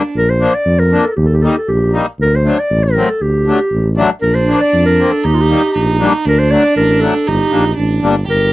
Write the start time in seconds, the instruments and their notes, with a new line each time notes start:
Already playing: violin D4
0.15 tuba A#1, clarinet A#4
0.30 clarinet C5
0.40 accordion F3 A#3 D4
0.55 clarinet D5
0.66 tuba F2
0.79 clarinet A#4
0.92 accordion F3 A#3 D4
1.04 clarinet A4 A#4
1.09 clarinet A4
1.16 tuba D#2, clarinet G4
1.25 clarinet A4
1.33 clarinet G4
1.41 accordion G3 A#3 D#4, clarinet A4
1.48 clarinet G4
1.57 clarinet A4
1.68 tuba A#1, clarinet G4
1.92 accordion G3 A#3 D#4
2.19 tuba D2, clarinet A#4
2.35 clarinet C5
2.44 accordion F#3 A3 D4
2.60 clarinet D5
2.70 tuba A1
2.84 clarinet A#4
2.96 accordion F#3 A3 C4
3.09 clarinet A4
3.21 tuba D2, clarinet G4
3.46 accordion F#3 A3 D4
3.71 tuba A1
3.97 accordion F#3 A3 D4
4.22 tuba A#1, violin D4, clarinet A#4
4.35 clarinet C5
4.48 accordion F3 A#3 D4
4.61 clarinet D5
4.73 tuba F2
4.86 clarinet A#4
4.99 accordion F3 A#3 C4
5.11 clarinet A4
5.24 tuba D#2, violin D#4, clarinet G4
5.34 clarinet F4
5.41 clarinet G4
5.49 accordion G3 A#3 D#4
5.75 tuba A#1, violin D#4
6.00 accordion G3 A#3 D4
6.25 tuba D2, violin D4, clarinet A#4
6.39 clarinet C5
6.51 accordion F#3 A3 D4, clarinet D5
6.76 tuba A1, clarinet A#4
7.00 accordion F#3 A3 D4, clarinet A4
7.27 tuba G1, violin D#4, clarinet G4
7.51 tuba A#1, accordion G3 A#3 D4
7.77 tuba A1, violin D4
8.02 tuba G1, accordion G3 A#3 D4
8.28 tuba G1, violin G4, clarinet A#4